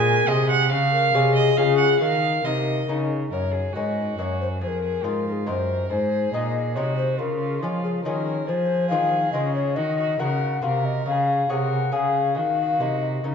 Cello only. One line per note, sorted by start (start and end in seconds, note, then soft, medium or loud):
0.00 0.28 A#2 medium
0.28 0.72 C3 medium
0.71 1.13 C#3 medium
1.14 1.56 C3 medium
1.58 2.00 C#3 medium
2.01 2.44 D#3 medium
2.45 2.87 C3 medium
2.88 3.31 C#3 medium
3.32 3.72 F#2 medium
3.75 4.18 G#2 medium
4.19 4.63 F#2 medium
4.62 5.05 F2 medium
5.05 5.50 G#2 medium
5.49 5.91 F#2 medium
5.92 6.33 G#2 medium
6.33 6.78 A#2 medium
6.77 7.22 C3 medium
7.20 7.64 C#3 medium
7.62 8.05 F3 medium
8.06 8.47 D#3 medium
8.48 8.92 F3 medium
8.91 9.33 D#3 medium
9.34 9.79 C#3 medium
9.78 10.20 D#3 medium
10.20 10.62 C#3 medium
10.64 11.06 C3 medium
11.08 11.49 C#3 medium
11.50 11.92 C3 medium
11.94 12.38 C#3 medium
12.37 12.81 D#3 medium
12.80 13.24 C3 soft
13.25 13.35 C#3 medium